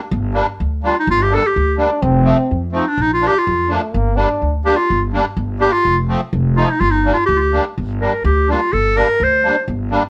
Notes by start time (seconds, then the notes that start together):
0.11 G1
0.34 G3 A#3 D4
0.60 D2
0.83 G3 A#3 D4 F4
1.00 D#4
1.07 G1 F4
1.22 G4
1.30 G3 A#3 D4 A4
1.47 G4
1.56 D2
1.78 G3 A#3 D4
2.02 F1 C4
2.24 F3 A3 C4
2.51 F2
2.72 F3 A3 C4 D#4
2.88 D4
2.98 A#1 D#4
3.14 F4
3.22 F3 A#3 D4
3.27 G4
3.38 F4
3.47 F2
3.69 F3 A3 A#3 D4
3.93 G1 A#3
4.16 G3 A#3 D4
4.42 D2
4.65 G3 A#3 D4 G4
4.76 F4
4.90 G1
5.13 G3 A#3 D4
5.37 G1
5.59 G3 A#3 D4 G4
5.72 F4
5.85 F1
6.08 F3 A3 C4
6.33 F1
6.56 F3 A3 D#4 F4
6.67 D#4
6.80 G1 F4
6.91 D#4
7.05 G3 A#3 D4
7.14 F4
7.26 D2 G4
7.36 F4 G4
7.52 G3 A#3 D4
7.77 G1
8.00 G3 A#3 D4 A#4
8.24 D2 G4
8.48 G3 A#3 D4 F4
8.73 G1 A4
8.95 G3 A#3 D4 A#4
9.20 D2 C5
9.44 G3 A#3 D4
9.68 G1
9.91 G3 A#3 D4